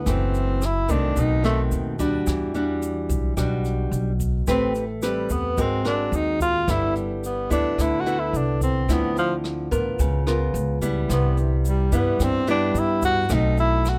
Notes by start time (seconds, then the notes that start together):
Already playing: B3
0.06 F#1 F#2 E3 A3 C4, kick, cross-stick, closed hi-hat, shaker
0.34 closed hi-hat, shaker
0.62 E4, cross-stick, closed hi-hat, shaker
0.89 C2 D#3 A3 C4 D4, kick, closed hi-hat, shaker
1.16 B1 B2 D#4, kick, closed hi-hat, shaker
1.44 D#3 A3 C4, cross-stick, closed hi-hat, shaker
1.72 D#2, closed hi-hat, shaker
1.99 G3 D4 F#4, kick, closed hi-hat, shaker
2.27 E2 E3, kick, cross-stick, closed hi-hat, shaker
2.54 G3 D4 F#4, closed hi-hat, shaker
2.82 closed hi-hat, shaker
3.09 B1, kick, closed hi-hat, shaker
3.37 B1 B2 G3 D4 F#4, kick, cross-stick, closed hi-hat, shaker
3.65 closed hi-hat, shaker
3.91 B1, closed hi-hat, shaker
4.20 kick, closed hi-hat, shaker
4.47 A1 A3 C4 G4 B4, kick, cross-stick, closed hi-hat, shaker
4.75 E3, closed hi-hat, shaker
5.02 G3 C4 G4 B4, cross-stick, closed hi-hat, shaker
5.30 E2 B3, kick, closed hi-hat, shaker
5.57 G#1 G#3 C4 F#4 A#4, kick, closed hi-hat, shaker
5.85 C4 D4 F#4 A#4, cross-stick, closed hi-hat, shaker
6.12 D#2 D#4, closed hi-hat, shaker
6.40 F4, kick, closed hi-hat, shaker
6.68 G1 G3 B3 E4 A4, kick, cross-stick, closed hi-hat, shaker
6.95 G3, closed hi-hat, shaker
7.23 B3, closed hi-hat, shaker
7.50 D2 B3 D4 E4 A4, kick, closed hi-hat, shaker
7.78 D2 D3 E4, kick, cross-stick, closed hi-hat, shaker
8.00 F#4
8.06 B3 E4 A4, closed hi-hat, shaker
8.19 E4
8.33 C2 D4, closed hi-hat, shaker
8.61 C4, kick, closed hi-hat, shaker
8.89 D2 D3 F3 B3 C4 E4, kick, cross-stick, closed hi-hat, shaker
9.16 F3, closed hi-hat, shaker
9.44 cross-stick, closed hi-hat
9.71 A1 B3 F4 A#4, kick, closed hi-hat, shaker
9.99 C#2 C#3, kick, closed hi-hat, shaker
10.27 B3 F4 A#4, cross-stick, closed hi-hat, shaker
10.54 C#2, closed hi-hat, shaker
10.81 G3 B3 E4, kick, closed hi-hat, shaker
11.09 C2 C3 B3, kick, cross-stick, closed hi-hat, shaker
11.37 D3, closed hi-hat, shaker
11.65 G3, closed hi-hat, shaker
11.92 G2 G3 B3 E4, kick, closed hi-hat, shaker
12.20 G2 C4, kick, cross-stick, closed hi-hat, shaker
12.47 G3 B3 D4 E4, closed hi-hat, shaker
12.74 G2, closed hi-hat, shaker
12.79 E4
13.02 F#4, kick, closed hi-hat, shaker
13.29 B1 B2 A3 C4 D#4, kick, cross-stick, closed hi-hat, shaker
13.33 D#4
13.57 E4, closed hi-hat, shaker
13.85 F#4, cross-stick, closed hi-hat, shaker